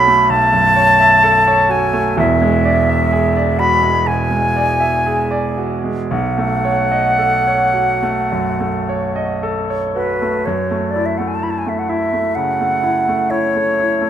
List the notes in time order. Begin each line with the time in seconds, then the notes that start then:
Already playing: B1 A3 F#4 A4 C#5 E5 B5
0.07 A3
0.30 B1 A5
0.53 F#2
0.76 C#5
1.00 E5
1.23 A4
1.47 C#5
1.69 F#4 G#5
1.93 A3
2.17 E1 E2 E5
2.42 G#3
2.65 D5
2.89 E5
3.12 G#4
3.36 D5
3.59 F#4 B5
3.83 G#3
4.06 B2 G#5
4.31 G#3
4.56 D5
4.80 E5
5.06 G#4
5.31 D5
5.58 F#4
5.84 G#3
6.11 B1 F#5
6.38 A3
6.65 C#5
6.92 D#5
7.18 A4
7.47 C#5
7.74 F#4
8.03 A3
8.32 F#2
8.60 A3
8.89 C#5
9.16 D#5
9.43 A4
9.70 C#5
9.95 F#4 B4
10.22 A3
10.46 F#2 C#5
10.71 A3
10.90 D5
10.96 E4
11.06 E5
11.18 A3 F#5
11.28 G#5
11.35 A5
11.43 E4 B5
11.50 A5
11.58 G#5
11.67 A3 E5
11.79 F#5
11.89 E4 E5
12.13 A3
12.35 C#3 F#5
12.61 A3
12.83 E4
13.08 A3
13.30 E4 C#5
13.56 A3
13.80 E4
14.01 A3